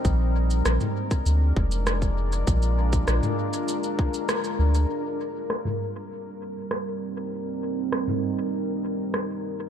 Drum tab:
SH |x--xxx-xx--xxx-x|xx-xxx-xxx-xxx-x|----------------|----------------|
SD |----r-------r---|----r-------r---|----r-------r---|----r-------r---|
T2 |-----o----------|-----o----------|-----o----------|-----o----------|
BD |o------o--o--o--|o--o------o-----|----------------|----------------|